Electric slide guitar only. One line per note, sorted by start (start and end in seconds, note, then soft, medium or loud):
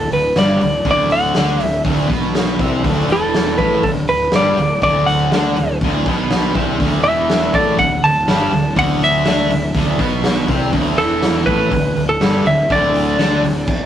0.00 0.10 A4 medium
0.13 0.38 B4 medium
0.38 0.88 D5 medium
0.91 1.14 D5 loud
1.12 1.63 F#5 loud
1.63 1.82 E5 loud
3.12 3.62 A4 medium
3.58 3.84 B4 medium
3.84 3.90 A4 medium
4.09 4.34 B4 medium
4.36 4.80 D5 medium
4.83 5.08 D5 loud
5.06 5.77 F#5 loud
7.04 7.55 E5 medium
7.55 7.77 D5 medium
7.79 8.04 F#5 medium
8.04 8.79 A5 loud
8.79 9.00 F#5 loud
9.04 10.46 E5 medium
10.98 11.46 A4 medium
11.46 12.04 B4 loud
12.09 12.46 A4 loud
12.47 12.71 E5 medium
12.72 13.86 D5 loud